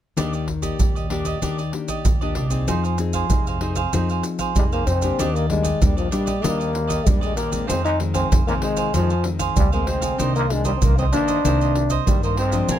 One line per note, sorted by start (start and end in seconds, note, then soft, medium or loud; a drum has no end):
0.17 0.70 D#2 medium
0.17 0.77 D#3 medium
0.17 0.47 A#3 medium
0.17 0.31 D4 medium
0.17 0.47 D4 medium
0.17 0.32 G4 medium
0.17 0.47 G4 medium
0.17 0.32 D5 medium
0.17 0.32 D#5 medium
0.17 pandeiro medium
0.17 maracas medium
0.17 surdo medium
0.33 0.46 G4 soft
0.33 0.47 D5 soft
0.33 0.47 D#5 soft
0.33 pandeiro soft
0.33 maracas soft
0.48 muted cavaquinho stroke soft
0.48 pandeiro medium
0.48 surdo soft
0.62 1.05 A#3 soft
0.62 1.05 G4 medium
0.62 0.94 G4 soft
0.62 0.93 D5 medium
0.62 0.94 D#5 soft
0.62 pandeiro medium
0.62 maracas medium
0.62 surdo soft
0.79 1.33 D#2 medium
0.79 1.40 A#2 soft
0.79 pandeiro medium
0.79 maracas medium
0.79 surdo medium
0.95 1.09 G4 soft
0.95 1.10 D5 soft
0.95 1.09 D#5 soft
0.95 pandeiro soft
0.95 maracas soft
1.10 1.37 A#3 soft
1.10 1.25 D4 soft
1.10 1.37 D4 medium
1.10 1.25 G4 soft
1.10 1.38 G4 medium
1.10 1.24 D5 soft
1.10 1.25 D#5 soft
1.10 pandeiro medium
1.25 1.41 G4 soft
1.25 1.41 D5 medium
1.25 1.41 D#5 medium
1.25 pandeiro soft
1.25 maracas medium
1.25 surdo soft
1.42 1.69 D#2 medium
1.42 2.02 D#3 medium
1.42 1.61 A#3 soft
1.42 1.57 D4 medium
1.42 1.61 D4 soft
1.42 1.57 G4 medium
1.42 1.62 G4 soft
1.42 1.57 D5 medium
1.42 1.57 D#5 medium
1.42 pandeiro medium
1.42 maracas medium
1.42 surdo medium
1.58 1.72 G4 soft
1.58 1.72 D5 soft
1.58 1.72 D#5 soft
1.58 pandeiro soft
1.58 maracas soft
1.73 2.03 A#3 soft
1.73 2.03 D4 soft
1.73 2.03 G4 soft
1.73 muted cavaquinho stroke soft
1.73 pandeiro medium
1.88 2.20 G4 soft
1.88 2.19 D5 medium
1.88 2.20 D#5 medium
1.88 pandeiro medium
1.88 maracas medium
1.88 surdo soft
2.05 2.32 D#2 medium
2.05 2.66 A#2 soft
2.05 pandeiro medium
2.05 maracas medium
2.05 surdo medium
2.21 2.48 A#3 medium
2.21 2.48 D4 medium
2.21 2.35 G4 medium
2.21 2.48 G4 medium
2.21 2.36 D5 medium
2.21 2.35 D#5 medium
2.21 pandeiro soft
2.21 maracas soft
2.35 2.63 C2 medium
2.35 2.50 D4 soft
2.35 2.50 G4 soft
2.35 2.49 D5 soft
2.35 2.49 D#5 soft
2.35 pandeiro medium
2.50 2.97 C4 medium
2.50 2.98 D#4 soft
2.50 2.66 G4 soft
2.50 2.99 G#4 medium
2.50 2.66 D5 soft
2.50 2.66 D#5 soft
2.50 pandeiro soft
2.50 maracas medium
2.50 surdo soft
2.68 3.21 F2 medium
2.68 3.28 F3 medium
2.68 2.82 D#4 medium
2.68 2.82 G#4 medium
2.68 2.83 C5 medium
2.68 2.82 F5 medium
2.68 pandeiro medium
2.68 maracas medium
2.68 surdo medium
2.83 2.98 G#4 soft
2.83 2.99 C5 soft
2.83 2.98 F5 soft
2.83 pandeiro soft
2.83 maracas soft
2.98 3.25 C4 medium
2.98 3.26 D#4 medium
2.98 3.26 G#4 medium
2.98 muted cavaquinho stroke soft
2.98 pandeiro medium
2.98 maracas medium
3.13 3.45 G#4 medium
3.13 3.45 C5 medium
3.13 3.45 F5 medium
3.13 pandeiro soft
3.13 maracas medium
3.13 surdo soft
3.30 3.84 F2 medium
3.30 3.90 C3 soft
3.30 3.57 C4 medium
3.30 3.57 D#4 medium
3.30 3.57 G#4 medium
3.30 pandeiro medium
3.30 maracas medium
3.30 surdo medium
3.47 3.61 G#4 soft
3.47 3.61 C5 soft
3.47 3.61 F5 soft
3.47 pandeiro soft
3.47 maracas soft
3.61 3.80 C4 medium
3.61 3.76 D#4 soft
3.61 3.80 D#4 medium
3.61 3.76 G#4 soft
3.61 3.81 G#4 medium
3.61 3.76 C5 soft
3.61 3.75 F5 medium
3.61 pandeiro medium
3.76 3.92 G#4 medium
3.76 3.92 C5 medium
3.76 3.92 F5 medium
3.76 pandeiro medium
3.76 maracas medium
3.76 surdo soft
3.93 4.20 F2 medium
3.93 4.53 F3 medium
3.93 4.51 C4 soft
3.93 4.08 D#4 medium
3.93 4.51 D#4 soft
3.93 4.08 G#4 medium
3.93 4.52 G#4 medium
3.93 4.08 C5 medium
3.93 4.08 F5 medium
3.93 pandeiro medium
3.93 maracas medium
3.93 surdo medium
4.09 4.24 G#4 soft
4.09 4.24 C5 soft
4.09 4.24 F5 soft
4.09 pandeiro soft
4.09 maracas soft
4.23 muted cavaquinho stroke soft
4.23 pandeiro medium
4.23 maracas medium
4.39 4.71 G#4 medium
4.39 4.70 C5 medium
4.39 4.70 F5 medium
4.39 pandeiro medium
4.39 maracas medium
4.39 surdo soft
4.56 4.83 F2 medium
4.56 5.16 C3 soft
4.56 4.64 G3 medium
4.56 4.86 C4 medium
4.56 4.86 D#4 medium
4.56 4.87 G#4 medium
4.56 pandeiro medium
4.56 maracas medium
4.56 surdo medium
4.72 4.86 A#3 medium
4.72 4.86 G#4 medium
4.72 4.87 C5 medium
4.72 4.87 F5 medium
4.72 pandeiro soft
4.72 maracas soft
4.87 5.14 F2 medium
4.87 5.36 C4 medium
4.87 5.02 D#4 soft
4.87 5.02 G#4 soft
4.87 5.01 C5 soft
4.87 5.01 F5 medium
4.87 pandeiro medium
4.87 maracas medium
5.02 5.45 A#3 medium
5.02 5.45 D4 medium
5.02 5.46 G4 medium
5.02 5.18 G#4 soft
5.02 5.17 C5 soft
5.02 5.17 F5 soft
5.02 pandeiro soft
5.02 maracas medium
5.02 surdo soft
5.19 5.72 D#2 medium
5.19 5.79 D#3 medium
5.19 5.33 D4 medium
5.19 5.34 G4 medium
5.19 5.34 D5 medium
5.19 5.34 D#5 medium
5.19 pandeiro medium
5.19 maracas medium
5.19 surdo medium
5.34 5.49 A#3 medium
5.34 5.49 G4 soft
5.34 5.49 D5 soft
5.34 5.49 D#5 soft
5.34 pandeiro soft
5.34 maracas soft
5.49 5.69 G3 medium
5.49 5.84 G#3 medium
5.49 5.69 A#3 medium
5.49 5.69 D4 medium
5.49 muted cavaquinho stroke soft
5.49 pandeiro medium
5.49 surdo soft
5.63 5.96 G4 soft
5.63 5.95 D5 medium
5.63 5.95 D#5 medium
5.63 pandeiro medium
5.63 maracas medium
5.63 surdo soft
5.82 6.08 D#2 loud
5.82 6.41 A#2 soft
5.82 5.96 G3 medium
5.82 6.08 G3 soft
5.82 6.08 A#3 soft
5.82 6.08 D4 medium
5.82 pandeiro medium
5.82 maracas medium
5.82 surdo medium
5.97 6.11 F3 medium
5.97 6.10 G4 soft
5.97 6.11 D5 soft
5.97 6.11 D#5 soft
5.97 pandeiro soft
5.97 maracas soft
6.11 6.46 G3 medium
6.11 6.31 G3 medium
6.11 6.31 A#3 medium
6.11 6.26 D4 soft
6.11 6.32 D4 medium
6.11 6.26 G4 soft
6.11 6.25 D5 soft
6.11 6.26 D#5 soft
6.11 pandeiro medium
6.11 maracas medium
6.26 6.41 G4 medium
6.26 6.42 D5 medium
6.26 6.42 D#5 medium
6.26 pandeiro medium
6.26 maracas medium
6.26 surdo soft
6.42 6.97 D#2 medium
6.42 7.04 D#3 medium
6.42 7.02 G3 soft
6.42 7.09 A#3 medium
6.42 7.02 A#3 soft
6.42 6.57 D4 medium
6.42 6.57 G4 medium
6.42 6.57 D5 medium
6.42 6.58 D#5 medium
6.42 pandeiro medium
6.42 maracas medium
6.42 surdo medium
6.46 7.02 D4 medium
6.58 6.72 G4 soft
6.58 6.72 D5 soft
6.58 6.72 D#5 soft
6.58 pandeiro soft
6.58 maracas soft
6.73 muted cavaquinho stroke soft
6.73 pandeiro medium
6.87 7.20 G4 medium
6.87 7.19 D5 medium
6.87 7.20 D#5 medium
6.87 pandeiro medium
6.87 maracas medium
6.87 surdo soft
7.07 7.60 D#2 medium
7.07 7.66 A#2 medium
7.07 7.49 G3 medium
7.07 7.23 G3 medium
7.07 7.49 A#3 medium
7.07 7.49 D4 medium
7.07 pandeiro medium
7.07 maracas medium
7.07 surdo loud
7.21 7.36 G#3 medium
7.21 7.35 G4 soft
7.21 7.36 D5 medium
7.21 7.36 D#5 medium
7.21 pandeiro soft
7.21 maracas soft
7.36 7.66 A#3 medium
7.36 7.51 D4 soft
7.36 7.50 G4 soft
7.36 7.49 D5 medium
7.36 7.50 D#5 soft
7.36 pandeiro medium
7.36 maracas medium
7.50 7.95 D#3 medium
7.50 7.95 G#3 medium
7.50 7.96 C4 medium
7.50 7.67 G4 soft
7.50 7.66 D5 soft
7.50 7.67 D#5 soft
7.50 pandeiro medium
7.50 maracas medium
7.50 surdo soft
7.67 8.22 F2 medium
7.67 8.29 F2 medium
7.67 7.84 C4 medium
7.67 7.82 D#4 medium
7.67 7.83 G#4 medium
7.67 7.83 C5 medium
7.67 7.83 F5 medium
7.67 pandeiro medium
7.67 maracas medium
7.67 surdo medium
7.84 7.99 D#4 medium
7.84 7.99 G#4 soft
7.84 7.99 C5 soft
7.84 7.99 F5 medium
7.84 pandeiro soft
7.84 maracas soft
8.00 8.42 D#3 medium
8.00 8.42 G#3 medium
8.00 8.43 C4 medium
8.00 muted cavaquinho stroke soft
8.00 pandeiro medium
8.14 8.29 C4 medium
8.14 8.45 G#4 medium
8.14 8.45 C5 medium
8.14 8.45 F5 medium
8.14 pandeiro medium
8.14 maracas medium
8.14 surdo soft
8.32 8.58 F2 medium
8.32 8.91 C3 medium
8.32 pandeiro medium
8.32 maracas medium
8.32 surdo loud
8.47 8.90 D#3 medium
8.47 8.90 G#3 medium
8.47 8.55 A#3 medium
8.47 8.90 C4 medium
8.47 8.62 G#4 soft
8.47 8.62 C5 soft
8.47 8.62 F5 soft
8.47 pandeiro soft
8.47 maracas soft
8.62 8.92 G#3 medium
8.62 8.77 D#4 soft
8.62 8.77 G#4 soft
8.62 8.76 C5 soft
8.62 8.76 F5 soft
8.62 pandeiro medium
8.77 8.93 G#4 medium
8.77 8.92 C5 medium
8.77 8.92 F5 medium
8.77 pandeiro medium
8.77 maracas medium
8.77 surdo soft
8.94 9.48 F2 medium
8.94 9.54 F2 medium
8.94 9.13 D#3 soft
8.94 9.28 F3 medium
8.94 9.13 G#3 soft
8.94 9.13 C4 medium
8.94 9.08 D#4 medium
8.94 9.08 G#4 medium
8.94 9.08 C5 medium
8.94 9.09 F5 medium
8.94 pandeiro medium
8.94 maracas medium
8.94 surdo medium
9.10 9.24 G#4 soft
9.10 9.24 C5 soft
9.10 9.24 F5 soft
9.10 pandeiro soft
9.10 maracas soft
9.24 9.67 D#3 soft
9.24 9.67 G#3 soft
9.24 9.67 C4 medium
9.24 muted cavaquinho stroke soft
9.24 pandeiro medium
9.39 9.71 G#4 medium
9.39 9.71 C5 medium
9.39 9.70 F5 medium
9.39 pandeiro medium
9.39 maracas medium
9.39 surdo soft
9.56 10.10 D2 medium
9.56 10.17 C3 medium
9.56 9.71 G3 medium
9.56 pandeiro medium
9.56 maracas medium
9.56 surdo loud
9.72 10.15 G#3 medium
9.72 9.89 A#3 medium
9.72 10.16 C4 medium
9.72 9.86 G#4 medium
9.72 9.87 C5 medium
9.72 9.87 F5 medium
9.72 pandeiro soft
9.72 maracas soft
9.87 10.34 C4 medium
9.87 10.02 D#4 soft
9.87 10.02 G#4 soft
9.87 10.01 C5 soft
9.87 10.00 F5 soft
9.87 pandeiro medium
10.01 10.18 G#4 soft
10.01 10.17 C5 soft
10.01 10.17 F5 soft
10.01 pandeiro medium
10.01 maracas medium
10.01 surdo soft
10.18 10.72 C2 medium
10.18 10.79 C3 medium
10.18 10.46 D#3 medium
10.18 10.47 A#3 medium
10.18 10.33 D#4 medium
10.18 10.33 A#4 medium
10.18 10.33 C5 medium
10.18 10.34 D#5 medium
10.18 pandeiro medium
10.18 maracas medium
10.18 surdo medium
10.22 10.47 D4 medium
10.35 10.53 A#3 medium
10.35 10.49 A#4 soft
10.35 10.49 C5 soft
10.35 10.49 D#5 medium
10.35 pandeiro soft
10.35 maracas soft
10.50 10.77 D#3 soft
10.50 10.65 G#3 medium
10.50 10.78 A#3 medium
10.50 10.77 D4 medium
10.50 muted cavaquinho stroke soft
10.50 pandeiro medium
10.65 10.71 G3 medium
10.65 10.96 A#4 medium
10.65 10.96 C5 medium
10.65 10.95 D#5 medium
10.65 pandeiro medium
10.65 maracas medium
10.65 surdo soft
10.76 10.84 C4 medium
10.82 11.08 C2 medium
10.82 11.41 G2 soft
10.82 11.08 D#3 medium
10.82 10.98 A#3 medium
10.82 11.09 A#3 medium
10.82 11.09 D4 medium
10.82 pandeiro medium
10.82 maracas medium
10.82 surdo medium
10.98 11.05 C4 medium
10.98 11.12 A#4 soft
10.98 11.13 C5 soft
10.98 11.12 D#5 soft
10.98 pandeiro soft
10.98 maracas soft
11.12 11.39 D#3 medium
11.12 11.39 A#3 medium
11.12 12.02 D4 loud
11.12 11.39 D4 medium
11.12 11.27 D#4 soft
11.12 11.27 A#4 soft
11.12 11.28 C5 soft
11.12 11.26 D#5 soft
11.12 pandeiro medium
11.12 maracas medium
11.28 11.43 A#4 soft
11.28 11.43 C5 medium
11.28 11.42 D#5 medium
11.28 pandeiro soft
11.28 maracas medium
11.28 surdo soft
11.44 11.98 C2 medium
11.44 12.03 C3 medium
11.44 11.84 D#3 medium
11.44 11.85 A#3 medium
11.44 11.85 D4 medium
11.44 11.59 D#4 medium
11.44 11.59 A#4 medium
11.44 11.59 C5 medium
11.44 11.60 D#5 medium
11.44 pandeiro medium
11.44 maracas medium
11.44 surdo medium
11.61 11.75 A#4 soft
11.61 11.75 C5 soft
11.61 11.75 D#5 soft
11.61 pandeiro soft
11.61 maracas soft
11.75 muted cavaquinho stroke soft
11.75 pandeiro medium
11.90 12.21 A#4 medium
11.90 12.21 C5 medium
11.90 12.21 D#5 medium
11.90 pandeiro medium
11.90 maracas medium
11.90 surdo soft
12.06 12.66 G2 medium
12.06 12.60 G2 medium
12.06 12.36 D#3 medium
12.06 12.22 G3 medium
12.06 12.36 A#3 medium
12.06 12.36 D4 medium
12.06 pandeiro medium
12.06 maracas medium
12.06 surdo medium
12.23 12.37 A#3 medium
12.23 12.38 A#4 medium
12.23 12.38 C5 medium
12.23 12.37 D#5 medium
12.23 pandeiro soft
12.23 maracas soft
12.37 12.79 C4 medium
12.37 12.53 D#4 medium
12.37 12.53 A#4 soft
12.37 12.53 C5 soft
12.37 12.52 D#5 soft
12.37 pandeiro medium
12.52 12.79 F3 medium
12.52 12.79 G#3 medium
12.52 12.79 D4 medium
12.52 12.68 A#4 soft
12.52 12.68 C5 soft
12.52 12.67 D#5 soft
12.52 pandeiro soft
12.52 maracas medium
12.52 surdo soft
12.69 12.79 A#1 medium
12.69 12.79 A#2 medium
12.69 12.79 D4 medium
12.69 12.79 A#4 medium
12.69 12.79 F5 medium
12.69 12.79 G#5 medium
12.69 pandeiro medium
12.69 maracas medium
12.69 surdo medium